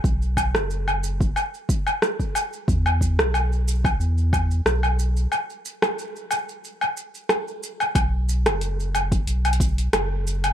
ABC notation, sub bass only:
X:1
M:4/4
L:1/16
Q:"Swing 16ths" 1/4=91
K:Elyd
V:1 name="Sub bass" clef=bass
B,,,3 F,,,4- F,,, z8 | E,,3 B,,,4- B,,, E,,4 B,,,4 | z16 | B,,,3 F,,,4- F,,, B,,,4 F,,,4 |]